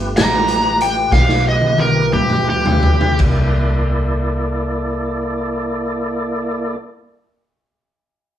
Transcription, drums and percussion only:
0.17 snare loud
0.17 closed hi-hat medium
0.48 closed hi-hat medium
0.80 closed hi-hat medium
1.12 kick medium
1.12 snare medium
1.29 snare medium
1.62 high tom medium
1.78 high tom medium
2.13 mid tom medium
2.30 mid tom medium
2.66 floor tom medium
2.83 floor tom medium
3.01 floor tom medium
3.19 kick medium
3.19 crash medium

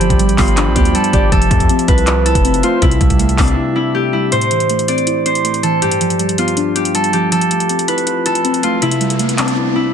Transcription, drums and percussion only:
0.01 closed hi-hat medium
0.10 kick loud
0.10 closed hi-hat medium
0.19 closed hi-hat medium
0.29 closed hi-hat medium
0.38 kick loud
0.38 clap loud
0.38 open hi-hat medium
0.48 closed hi-hat medium
0.57 clap loud
0.57 closed hi-hat medium
0.76 kick loud
0.76 closed hi-hat medium
0.85 closed hi-hat medium
0.95 closed hi-hat medium
1.04 closed hi-hat medium
1.13 kick loud
1.13 closed hi-hat medium
1.32 kick loud
1.32 closed hi-hat medium
1.42 closed hi-hat medium
1.51 kick loud
1.51 closed hi-hat medium
1.60 kick loud
1.60 closed hi-hat medium
1.69 closed hi-hat medium
1.79 closed hi-hat medium
1.88 kick loud
1.88 closed hi-hat medium
1.98 closed hi-hat medium
2.07 clap loud
2.07 closed hi-hat medium
2.26 closed hi-hat medium
2.35 kick medium
2.35 closed hi-hat medium
2.45 closed hi-hat medium
2.54 closed hi-hat medium
2.63 closed hi-hat medium
2.82 kick loud
2.82 closed hi-hat medium
2.91 closed hi-hat medium
3.01 kick loud
3.01 closed hi-hat medium
3.10 kick loud
3.10 closed hi-hat medium
3.19 closed hi-hat medium
3.29 closed hi-hat medium
3.38 kick loud
3.38 clap loud
3.38 open hi-hat loud
3.48 closed hi-hat medium
4.32 closed hi-hat medium
4.41 closed hi-hat medium
4.51 closed hi-hat medium
4.60 closed hi-hat soft
4.70 closed hi-hat medium
4.79 closed hi-hat medium
4.88 closed hi-hat medium
4.98 closed hi-hat soft
5.07 closed hi-hat medium
5.26 closed hi-hat medium
5.35 closed hi-hat medium
5.45 closed hi-hat medium
5.54 closed hi-hat medium
5.63 closed hi-hat medium
5.82 closed hi-hat medium
5.91 closed hi-hat medium
6.01 closed hi-hat medium
6.10 closed hi-hat medium
6.19 closed hi-hat medium
6.29 closed hi-hat medium
6.38 closed hi-hat medium
6.48 closed hi-hat medium
6.57 closed hi-hat medium
6.76 closed hi-hat medium
6.85 closed hi-hat medium
6.95 closed hi-hat medium
7.04 closed hi-hat soft
7.13 closed hi-hat medium
7.32 closed hi-hat medium
7.41 closed hi-hat medium
7.51 closed hi-hat medium
7.60 closed hi-hat soft
7.69 closed hi-hat medium
7.79 closed hi-hat medium
7.88 closed hi-hat medium
7.98 closed hi-hat soft
8.07 closed hi-hat medium
8.26 closed hi-hat medium
8.35 closed hi-hat medium
8.45 closed hi-hat medium
8.54 closed hi-hat medium
8.63 closed hi-hat medium
8.82 closed hi-hat medium
8.91 closed hi-hat medium
9.01 closed hi-hat medium
9.10 closed hi-hat medium
9.19 closed hi-hat medium
9.29 closed hi-hat medium
9.38 clap loud
9.38 closed hi-hat medium
9.48 closed hi-hat soft

